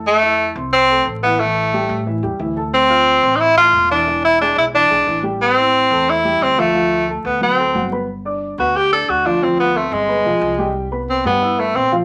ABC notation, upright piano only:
X:1
M:4/4
L:1/8
Q:1/4=179
K:Ddor
V:1 name="Upright piano"
[A,Aa] [Eee']2 [Ccc']2 [A,Aa]2 [E,Ee] | [E,Ee]2 [G,Gg]2 [E,Ee] [G,Gg] [E,Ee] [A,Aa]- | [A,Aa] [Fff']2 [Ccc']2 [A,Aa]2 [E,Ee] | [E,Ee]2 [^G,^G^g]2 [E,Ee] [G,Gg] [E,Ee] [=G,=G=g]- |
[G,Gg] [Eee']2 [A,Aa]2 [G,Gg]2 [F,Ff] | [F,Ff]2 [A,Aa]2 [^F,^F^f] [A,Aa] [F,Ff] [B,Bb] | [K:G] z [Ddd']2 [B,Bb] [Ggg'] [Ddd']2 [=F,=F=f] | [=F,=F=f]2 [Ccc']2 [B,Bb] [F,Ff]2 [G,Gg]- |
[G,Gg] [B,Bb]2 [G,Gg] [Eee'] [B,Bb]2 [=F,=F=f] |]